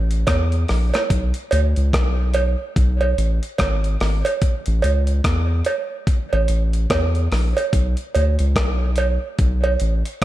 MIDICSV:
0, 0, Header, 1, 3, 480
1, 0, Start_track
1, 0, Tempo, 829073
1, 636, Time_signature, 4, 2, 24, 8
1, 5931, End_track
2, 0, Start_track
2, 0, Title_t, "Sub bass"
2, 0, Program_c, 0, 38
2, 0, Note_on_c, 0, 33, 88
2, 142, Note_off_c, 0, 33, 0
2, 162, Note_on_c, 0, 40, 92
2, 377, Note_off_c, 0, 40, 0
2, 405, Note_on_c, 0, 34, 90
2, 531, Note_off_c, 0, 34, 0
2, 639, Note_on_c, 0, 35, 101
2, 767, Note_off_c, 0, 35, 0
2, 882, Note_on_c, 0, 38, 100
2, 1009, Note_off_c, 0, 38, 0
2, 1024, Note_on_c, 0, 37, 82
2, 1110, Note_off_c, 0, 37, 0
2, 1124, Note_on_c, 0, 35, 84
2, 1480, Note_off_c, 0, 35, 0
2, 1603, Note_on_c, 0, 35, 96
2, 1817, Note_off_c, 0, 35, 0
2, 1840, Note_on_c, 0, 33, 92
2, 1968, Note_off_c, 0, 33, 0
2, 2080, Note_on_c, 0, 32, 98
2, 2296, Note_off_c, 0, 32, 0
2, 2321, Note_on_c, 0, 32, 85
2, 2448, Note_off_c, 0, 32, 0
2, 2705, Note_on_c, 0, 33, 100
2, 2790, Note_off_c, 0, 33, 0
2, 2800, Note_on_c, 0, 37, 96
2, 3016, Note_off_c, 0, 37, 0
2, 3039, Note_on_c, 0, 40, 101
2, 3255, Note_off_c, 0, 40, 0
2, 3663, Note_on_c, 0, 33, 87
2, 3749, Note_off_c, 0, 33, 0
2, 3757, Note_on_c, 0, 33, 90
2, 3974, Note_off_c, 0, 33, 0
2, 4001, Note_on_c, 0, 40, 102
2, 4216, Note_off_c, 0, 40, 0
2, 4236, Note_on_c, 0, 34, 87
2, 4365, Note_off_c, 0, 34, 0
2, 4477, Note_on_c, 0, 35, 103
2, 4606, Note_off_c, 0, 35, 0
2, 4722, Note_on_c, 0, 38, 93
2, 4848, Note_off_c, 0, 38, 0
2, 4862, Note_on_c, 0, 37, 87
2, 4948, Note_off_c, 0, 37, 0
2, 4957, Note_on_c, 0, 35, 75
2, 5315, Note_off_c, 0, 35, 0
2, 5437, Note_on_c, 0, 35, 88
2, 5654, Note_off_c, 0, 35, 0
2, 5679, Note_on_c, 0, 33, 83
2, 5807, Note_off_c, 0, 33, 0
2, 5931, End_track
3, 0, Start_track
3, 0, Title_t, "Drums"
3, 62, Note_on_c, 9, 42, 60
3, 119, Note_off_c, 9, 42, 0
3, 155, Note_on_c, 9, 56, 73
3, 158, Note_on_c, 9, 36, 109
3, 158, Note_on_c, 9, 42, 84
3, 161, Note_on_c, 9, 37, 95
3, 213, Note_off_c, 9, 56, 0
3, 215, Note_off_c, 9, 42, 0
3, 216, Note_off_c, 9, 36, 0
3, 219, Note_off_c, 9, 37, 0
3, 301, Note_on_c, 9, 42, 44
3, 359, Note_off_c, 9, 42, 0
3, 396, Note_on_c, 9, 46, 55
3, 401, Note_on_c, 9, 37, 57
3, 454, Note_off_c, 9, 46, 0
3, 459, Note_off_c, 9, 37, 0
3, 542, Note_on_c, 9, 56, 71
3, 546, Note_on_c, 9, 42, 55
3, 550, Note_on_c, 9, 37, 66
3, 600, Note_off_c, 9, 56, 0
3, 604, Note_off_c, 9, 42, 0
3, 608, Note_off_c, 9, 37, 0
3, 638, Note_on_c, 9, 36, 105
3, 639, Note_on_c, 9, 42, 88
3, 696, Note_off_c, 9, 36, 0
3, 697, Note_off_c, 9, 42, 0
3, 775, Note_on_c, 9, 42, 58
3, 833, Note_off_c, 9, 42, 0
3, 874, Note_on_c, 9, 56, 66
3, 881, Note_on_c, 9, 42, 80
3, 932, Note_off_c, 9, 56, 0
3, 939, Note_off_c, 9, 42, 0
3, 1021, Note_on_c, 9, 42, 50
3, 1079, Note_off_c, 9, 42, 0
3, 1119, Note_on_c, 9, 36, 100
3, 1122, Note_on_c, 9, 42, 100
3, 1124, Note_on_c, 9, 37, 109
3, 1177, Note_off_c, 9, 36, 0
3, 1180, Note_off_c, 9, 42, 0
3, 1182, Note_off_c, 9, 37, 0
3, 1352, Note_on_c, 9, 42, 54
3, 1357, Note_on_c, 9, 56, 88
3, 1410, Note_off_c, 9, 42, 0
3, 1415, Note_off_c, 9, 56, 0
3, 1599, Note_on_c, 9, 36, 120
3, 1600, Note_on_c, 9, 42, 78
3, 1657, Note_off_c, 9, 36, 0
3, 1658, Note_off_c, 9, 42, 0
3, 1741, Note_on_c, 9, 56, 69
3, 1799, Note_off_c, 9, 56, 0
3, 1843, Note_on_c, 9, 42, 65
3, 1900, Note_off_c, 9, 42, 0
3, 1984, Note_on_c, 9, 42, 56
3, 2042, Note_off_c, 9, 42, 0
3, 2075, Note_on_c, 9, 56, 74
3, 2078, Note_on_c, 9, 36, 96
3, 2080, Note_on_c, 9, 42, 80
3, 2083, Note_on_c, 9, 37, 95
3, 2133, Note_off_c, 9, 56, 0
3, 2136, Note_off_c, 9, 36, 0
3, 2138, Note_off_c, 9, 42, 0
3, 2141, Note_off_c, 9, 37, 0
3, 2224, Note_on_c, 9, 42, 49
3, 2282, Note_off_c, 9, 42, 0
3, 2318, Note_on_c, 9, 46, 57
3, 2323, Note_on_c, 9, 37, 71
3, 2376, Note_off_c, 9, 46, 0
3, 2381, Note_off_c, 9, 37, 0
3, 2460, Note_on_c, 9, 56, 71
3, 2466, Note_on_c, 9, 42, 59
3, 2518, Note_off_c, 9, 56, 0
3, 2524, Note_off_c, 9, 42, 0
3, 2557, Note_on_c, 9, 36, 110
3, 2557, Note_on_c, 9, 42, 84
3, 2615, Note_off_c, 9, 36, 0
3, 2615, Note_off_c, 9, 42, 0
3, 2696, Note_on_c, 9, 42, 54
3, 2754, Note_off_c, 9, 42, 0
3, 2793, Note_on_c, 9, 56, 76
3, 2802, Note_on_c, 9, 42, 80
3, 2851, Note_off_c, 9, 56, 0
3, 2859, Note_off_c, 9, 42, 0
3, 2936, Note_on_c, 9, 42, 57
3, 2994, Note_off_c, 9, 42, 0
3, 3036, Note_on_c, 9, 36, 114
3, 3036, Note_on_c, 9, 42, 98
3, 3038, Note_on_c, 9, 37, 110
3, 3094, Note_off_c, 9, 36, 0
3, 3094, Note_off_c, 9, 42, 0
3, 3096, Note_off_c, 9, 37, 0
3, 3269, Note_on_c, 9, 42, 60
3, 3279, Note_on_c, 9, 56, 81
3, 3327, Note_off_c, 9, 42, 0
3, 3337, Note_off_c, 9, 56, 0
3, 3514, Note_on_c, 9, 36, 121
3, 3516, Note_on_c, 9, 42, 79
3, 3572, Note_off_c, 9, 36, 0
3, 3574, Note_off_c, 9, 42, 0
3, 3663, Note_on_c, 9, 56, 70
3, 3721, Note_off_c, 9, 56, 0
3, 3752, Note_on_c, 9, 42, 66
3, 3810, Note_off_c, 9, 42, 0
3, 3899, Note_on_c, 9, 42, 55
3, 3957, Note_off_c, 9, 42, 0
3, 3995, Note_on_c, 9, 36, 98
3, 3995, Note_on_c, 9, 42, 88
3, 3999, Note_on_c, 9, 37, 104
3, 3999, Note_on_c, 9, 56, 75
3, 4053, Note_off_c, 9, 36, 0
3, 4053, Note_off_c, 9, 42, 0
3, 4056, Note_off_c, 9, 37, 0
3, 4057, Note_off_c, 9, 56, 0
3, 4139, Note_on_c, 9, 42, 44
3, 4197, Note_off_c, 9, 42, 0
3, 4236, Note_on_c, 9, 46, 60
3, 4240, Note_on_c, 9, 37, 60
3, 4294, Note_off_c, 9, 46, 0
3, 4298, Note_off_c, 9, 37, 0
3, 4381, Note_on_c, 9, 56, 69
3, 4387, Note_on_c, 9, 42, 58
3, 4439, Note_off_c, 9, 56, 0
3, 4445, Note_off_c, 9, 42, 0
3, 4475, Note_on_c, 9, 36, 102
3, 4476, Note_on_c, 9, 42, 77
3, 4533, Note_off_c, 9, 36, 0
3, 4533, Note_off_c, 9, 42, 0
3, 4614, Note_on_c, 9, 42, 56
3, 4672, Note_off_c, 9, 42, 0
3, 4716, Note_on_c, 9, 56, 65
3, 4720, Note_on_c, 9, 42, 68
3, 4774, Note_off_c, 9, 56, 0
3, 4778, Note_off_c, 9, 42, 0
3, 4856, Note_on_c, 9, 42, 54
3, 4914, Note_off_c, 9, 42, 0
3, 4954, Note_on_c, 9, 36, 114
3, 4957, Note_on_c, 9, 42, 93
3, 4959, Note_on_c, 9, 37, 120
3, 5012, Note_off_c, 9, 36, 0
3, 5015, Note_off_c, 9, 42, 0
3, 5016, Note_off_c, 9, 37, 0
3, 5185, Note_on_c, 9, 42, 62
3, 5198, Note_on_c, 9, 56, 83
3, 5243, Note_off_c, 9, 42, 0
3, 5256, Note_off_c, 9, 56, 0
3, 5434, Note_on_c, 9, 42, 82
3, 5435, Note_on_c, 9, 36, 127
3, 5492, Note_off_c, 9, 42, 0
3, 5493, Note_off_c, 9, 36, 0
3, 5579, Note_on_c, 9, 56, 78
3, 5637, Note_off_c, 9, 56, 0
3, 5672, Note_on_c, 9, 42, 77
3, 5730, Note_off_c, 9, 42, 0
3, 5821, Note_on_c, 9, 42, 54
3, 5879, Note_off_c, 9, 42, 0
3, 5931, End_track
0, 0, End_of_file